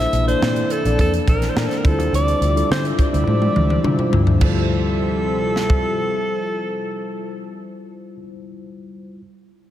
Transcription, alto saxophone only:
0, 0, Header, 1, 2, 480
1, 0, Start_track
1, 0, Key_signature, -1, "minor"
1, 0, Tempo, 571102
1, 1788, Time_signature, 4, 2, 24, 8
1, 8157, End_track
2, 0, Start_track
2, 0, Title_t, "Alto saxophone"
2, 0, Program_c, 0, 65
2, 0, Note_on_c, 0, 76, 115
2, 204, Note_off_c, 0, 76, 0
2, 231, Note_on_c, 0, 72, 108
2, 604, Note_on_c, 0, 69, 89
2, 617, Note_off_c, 0, 72, 0
2, 836, Note_off_c, 0, 69, 0
2, 842, Note_on_c, 0, 69, 97
2, 947, Note_off_c, 0, 69, 0
2, 1081, Note_on_c, 0, 70, 99
2, 1255, Note_on_c, 0, 72, 83
2, 1268, Note_off_c, 0, 70, 0
2, 1327, Note_on_c, 0, 70, 84
2, 1339, Note_off_c, 0, 72, 0
2, 1410, Note_on_c, 0, 69, 80
2, 1422, Note_off_c, 0, 70, 0
2, 1496, Note_on_c, 0, 70, 86
2, 1508, Note_off_c, 0, 69, 0
2, 1572, Note_on_c, 0, 69, 92
2, 1584, Note_off_c, 0, 70, 0
2, 1800, Note_off_c, 0, 69, 0
2, 1809, Note_on_c, 0, 74, 105
2, 2246, Note_off_c, 0, 74, 0
2, 2281, Note_on_c, 0, 72, 99
2, 2386, Note_off_c, 0, 72, 0
2, 2530, Note_on_c, 0, 74, 84
2, 3445, Note_off_c, 0, 74, 0
2, 3720, Note_on_c, 0, 69, 89
2, 6272, Note_off_c, 0, 69, 0
2, 8157, End_track
0, 0, End_of_file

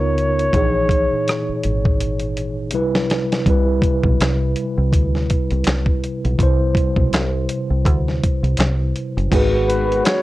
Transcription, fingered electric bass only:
0, 0, Header, 1, 3, 480
1, 0, Start_track
1, 0, Tempo, 731707
1, 350, Time_signature, 4, 2, 24, 8
1, 6706, End_track
2, 0, Start_track
2, 0, Title_t, "Fingered electric bass"
2, 0, Program_c, 0, 33
2, 0, Note_on_c, 0, 37, 90
2, 326, Note_off_c, 0, 37, 0
2, 355, Note_on_c, 0, 34, 93
2, 704, Note_off_c, 0, 34, 0
2, 1080, Note_on_c, 0, 32, 73
2, 1797, Note_off_c, 0, 32, 0
2, 1797, Note_on_c, 0, 36, 89
2, 2248, Note_off_c, 0, 36, 0
2, 2275, Note_on_c, 0, 36, 107
2, 2493, Note_off_c, 0, 36, 0
2, 2651, Note_on_c, 0, 35, 83
2, 2743, Note_off_c, 0, 35, 0
2, 2759, Note_on_c, 0, 36, 79
2, 2975, Note_off_c, 0, 36, 0
2, 3134, Note_on_c, 0, 36, 89
2, 3237, Note_off_c, 0, 36, 0
2, 3237, Note_on_c, 0, 38, 91
2, 3454, Note_off_c, 0, 38, 0
2, 3618, Note_on_c, 0, 36, 87
2, 3707, Note_off_c, 0, 36, 0
2, 3719, Note_on_c, 0, 36, 81
2, 3935, Note_off_c, 0, 36, 0
2, 4098, Note_on_c, 0, 35, 83
2, 4187, Note_off_c, 0, 35, 0
2, 4194, Note_on_c, 0, 36, 98
2, 4412, Note_off_c, 0, 36, 0
2, 4571, Note_on_c, 0, 35, 82
2, 4683, Note_off_c, 0, 35, 0
2, 4683, Note_on_c, 0, 36, 91
2, 4897, Note_off_c, 0, 36, 0
2, 5055, Note_on_c, 0, 36, 84
2, 5155, Note_off_c, 0, 36, 0
2, 5155, Note_on_c, 0, 38, 94
2, 5373, Note_off_c, 0, 38, 0
2, 5532, Note_on_c, 0, 36, 87
2, 5624, Note_off_c, 0, 36, 0
2, 5633, Note_on_c, 0, 36, 88
2, 5852, Note_off_c, 0, 36, 0
2, 6014, Note_on_c, 0, 30, 89
2, 6105, Note_off_c, 0, 30, 0
2, 6114, Note_on_c, 0, 32, 98
2, 6566, Note_off_c, 0, 32, 0
2, 6706, End_track
3, 0, Start_track
3, 0, Title_t, "Muted fingered electric bass strokes"
3, 738, Note_on_c, 9, 29, 43
3, 803, Note_off_c, 9, 29, 0
3, 978, Note_on_c, 9, 29, 48
3, 1044, Note_off_c, 9, 29, 0
3, 6706, End_track
0, 0, End_of_file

